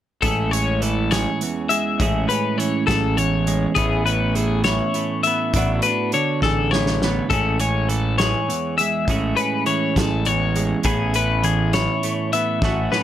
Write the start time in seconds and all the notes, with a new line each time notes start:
0.22 A1 A2 G#3 C#4 G#4 A4, kick, closed hi-hat
0.51 C#4 C#5, closed hi-hat
0.82 E3 A4, closed hi-hat
1.11 G#4 C#5, snare, closed hi-hat
1.41 E2, closed hi-hat
1.69 G#3 E5, closed hi-hat
2.00 A1 A2 G#3 C#4 G#4, kick, closed hi-hat
2.29 C#4 B4, closed hi-hat
2.58 E3 C#5, closed hi-hat
2.87 A1 G#4 A4, kick, snare, closed hi-hat
3.17 E2 C#5, closed hi-hat
3.47 G#3, closed hi-hat
3.75 A1 A2 B3 C#4 E4 G#4, kick, closed hi-hat
4.06 C#4 B4, closed hi-hat
4.35 E3 G#4, closed hi-hat
4.64 E4 C#5, snare, closed hi-hat
4.94 A2, closed hi-hat
5.23 B3 E5, closed hi-hat
5.54 A1 A2 B3 D4, kick, closed hi-hat
5.58 F#4
5.82 B4, closed hi-hat
5.86 D4
6.12 D3 C#5, closed hi-hat
6.42 A1 G#4 A4, kick, snare
6.71 A2 C#5, snare
6.87 snare
7.02 B3, snare
7.30 A1 A2 G#3 C#4 G#4 A4, kick, closed hi-hat
7.60 C#4 C#5, closed hi-hat
7.89 E3 A4, closed hi-hat
8.18 G#4 C#5, snare, closed hi-hat
8.48 E2, closed hi-hat
8.78 G#3 E5, closed hi-hat
9.08 A1 A2 G#3 C#4 G#4, kick, closed hi-hat
9.37 C#4 B4, closed hi-hat
9.66 E3 C#5, closed hi-hat
9.96 A1 G#4 A4, kick, snare, closed hi-hat
10.25 E2 C#5, closed hi-hat
10.56 G#3, closed hi-hat
10.83 A1 A2 B3 C#4 E4 G#4, kick, closed hi-hat
11.14 C#4 B4, closed hi-hat
11.43 E3 G#4, closed hi-hat
11.73 E4 C#5, snare, closed hi-hat
12.03 A2, closed hi-hat
12.33 B3 E5, closed hi-hat
12.62 A1 A2 A3 C#4 F#4, kick, snare
12.92 C#4 B4, snare